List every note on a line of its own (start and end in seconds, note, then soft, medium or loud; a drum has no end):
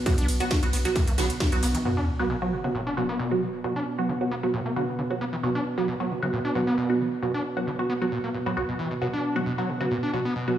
0.00 1.84 B2 medium
0.00 1.84 B3 medium
0.06 0.16 B2 medium
0.06 0.18 F#3 medium
0.06 0.18 B3 medium
0.06 0.18 F#4 medium
0.06 kick loud
0.06 closed hi-hat medium
0.06 ride medium
0.18 0.28 B1 medium
0.18 0.27 D4 loud
0.18 closed hi-hat medium
0.18 ride medium
0.28 0.40 B1 loud
0.28 closed hi-hat medium
0.28 open hi-hat loud
0.28 ride medium
0.40 0.51 F#3 medium
0.40 0.51 B3 medium
0.40 0.51 F#4 loud
0.40 closed hi-hat medium
0.40 ride medium
0.50 0.55 D3 medium
0.50 kick loud
0.50 snare loud
0.50 closed hi-hat loud
0.50 closed hi-hat medium
0.50 ride medium
0.63 0.73 B1 medium
0.63 0.81 F#3 medium
0.63 0.81 B3 medium
0.63 0.81 F#4 medium
0.63 closed hi-hat medium
0.63 ride medium
0.73 0.85 B1 loud
0.73 0.77 B3 loud
0.73 closed hi-hat medium
0.73 open hi-hat loud
0.73 ride medium
0.85 0.96 F#3 medium
0.85 0.89 F#3 medium
0.85 0.96 B3 medium
0.85 0.96 F#4 medium
0.85 snare medium
0.85 closed hi-hat medium
0.85 ride medium
0.95 1.02 A#2 loud
0.95 kick loud
0.95 snare soft
0.95 closed hi-hat medium
0.95 ride medium
1.07 1.17 B1 medium
1.07 1.13 A#3 medium
1.07 closed hi-hat medium
1.07 ride medium
1.18 1.30 B1 loud
1.18 1.28 D3 medium
1.18 1.30 F#3 medium
1.18 1.30 B3 medium
1.18 1.30 F#4 medium
1.18 snare loud
1.18 snare soft
1.18 closed hi-hat medium
1.18 open hi-hat loud
1.18 ride medium
1.30 closed hi-hat medium
1.30 ride medium
1.40 1.44 D3 medium
1.40 kick loud
1.40 snare loud
1.40 closed hi-hat medium
1.40 ride medium
1.52 1.62 B1 medium
1.52 1.70 F#3 medium
1.52 1.70 B3 medium
1.52 1.70 F#4 medium
1.52 closed hi-hat medium
1.52 ride medium
1.63 1.74 B1 loud
1.63 1.67 B3 loud
1.63 closed hi-hat medium
1.63 open hi-hat loud
1.63 ride medium
1.75 1.78 E3 loud
1.75 closed hi-hat medium
1.75 ride medium
1.85 10.58 B2 medium
1.85 1.92 B2 loud
1.85 1.97 F#3 medium
1.85 10.58 B3 medium
1.85 1.97 B3 medium
1.85 1.97 F#4 medium
1.85 sub drop medium
1.97 2.06 D4 loud
2.19 2.30 F#3 medium
2.19 2.28 B3 loud
2.19 2.30 B3 medium
2.19 2.30 F#4 medium
2.30 2.36 B2 loud
2.42 2.60 F#3 medium
2.42 2.54 F#3 medium
2.42 2.60 B3 medium
2.42 2.60 F#4 medium
2.52 2.56 B2 loud
2.64 2.70 C#3 medium
2.64 2.75 F#3 medium
2.64 2.75 B3 medium
2.64 2.75 F#4 medium
2.75 2.81 A#2 loud
2.87 2.95 D4 loud
2.97 3.04 B2 loud
2.97 3.09 F#3 medium
2.97 3.09 B3 medium
2.97 3.09 F#4 medium
3.09 3.18 B3 loud
3.19 3.43 B2 loud
3.31 3.49 F#3 medium
3.31 3.49 B3 medium
3.31 3.49 F#4 medium
3.42 3.48 F#3 medium
3.64 3.74 B2 medium
3.64 3.77 F#3 medium
3.64 3.77 B3 medium
3.64 3.77 F#4 medium
3.76 3.85 D4 loud
3.98 4.09 F#3 medium
3.98 4.09 B3 medium
3.98 4.09 F#4 medium
4.09 4.13 D3 medium
4.21 4.39 F#3 medium
4.21 4.39 B3 medium
4.21 4.39 F#4 medium
4.31 4.35 B3 loud
4.43 4.47 F#3 medium
4.43 4.54 F#3 medium
4.43 4.54 B3 medium
4.43 4.54 F#4 medium
4.54 4.60 A#2 loud
4.66 4.71 A#3 medium
4.76 4.86 D3 medium
4.76 4.88 F#3 medium
4.76 4.88 B3 medium
4.76 4.88 F#4 medium
4.99 5.02 D3 medium
5.10 5.28 F#3 medium
5.10 5.28 B3 medium
5.10 5.28 F#4 medium
5.21 5.25 B3 loud
5.33 5.36 E3 loud
5.43 5.50 B2 loud
5.43 5.56 F#3 medium
5.43 5.56 B3 medium
5.43 5.56 F#4 medium
5.55 5.64 D4 loud
5.78 5.89 F#3 medium
5.78 5.86 B3 loud
5.78 5.89 B3 medium
5.78 5.89 F#4 medium
5.88 5.95 B2 loud
6.00 6.18 F#3 medium
6.00 6.12 F#3 medium
6.00 6.18 B3 medium
6.00 6.18 F#4 medium
6.11 6.14 B2 loud
6.22 6.28 C#3 medium
6.22 6.33 F#3 medium
6.22 6.33 B3 medium
6.22 6.33 F#4 medium
6.33 6.39 A#2 loud
6.45 6.53 D4 loud
6.55 6.62 B2 loud
6.55 6.68 F#3 medium
6.55 6.68 B3 medium
6.55 6.68 F#4 medium
6.67 6.76 B3 loud
6.78 7.02 B2 loud
6.89 7.07 F#3 medium
6.89 7.08 B3 medium
6.89 7.07 F#4 medium
7.00 7.07 F#3 medium
7.22 7.32 B2 medium
7.22 7.35 F#3 medium
7.22 7.35 B3 medium
7.22 7.35 F#4 medium
7.34 7.43 D4 loud
7.57 7.68 F#3 medium
7.57 7.68 B3 medium
7.57 7.68 F#4 medium
7.67 7.71 D3 medium
7.79 7.97 F#3 medium
7.79 7.97 B3 medium
7.79 7.97 F#4 medium
7.90 7.94 B3 loud
8.01 8.05 F#3 medium
8.01 8.12 F#3 medium
8.01 8.13 B3 medium
8.01 8.13 F#4 medium
8.12 8.18 A#2 loud
8.24 8.30 A#3 medium
8.34 8.38 A#2 medium
8.46 8.52 A#2 medium
8.46 8.55 F#3 medium
8.46 8.55 B3 medium
8.46 8.55 F#4 loud
8.57 8.63 B1 medium
8.57 8.69 F#3 medium
8.57 8.69 B3 medium
8.57 8.69 F#4 medium
8.69 8.74 B2 medium
8.79 8.89 E3 loud
8.91 8.94 B2 medium
9.02 9.08 B2 loud
9.02 9.14 F#3 medium
9.02 9.14 B3 medium
9.02 9.14 F#4 medium
9.13 9.37 D4 loud
9.36 9.42 D3 loud
9.36 9.47 F#3 medium
9.36 9.47 B3 medium
9.36 9.47 F#4 medium
9.46 9.53 B2 loud
9.58 9.70 F#3 medium
9.58 9.76 F#3 medium
9.58 9.76 B3 medium
9.58 9.76 F#4 medium
9.69 9.73 B2 loud
9.80 9.86 C#3 medium
9.80 9.92 F#3 medium
9.80 9.92 B3 medium
9.80 9.92 F#4 medium
9.91 9.98 A#2 loud
10.03 10.12 D4 loud
10.13 10.20 B2 loud
10.13 10.26 F#3 medium
10.13 10.26 B3 medium
10.13 10.26 F#4 medium
10.25 10.34 B3 loud
10.36 10.58 B2 loud
10.48 10.58 F#3 medium
10.48 10.58 B3 medium
10.48 10.58 F#4 medium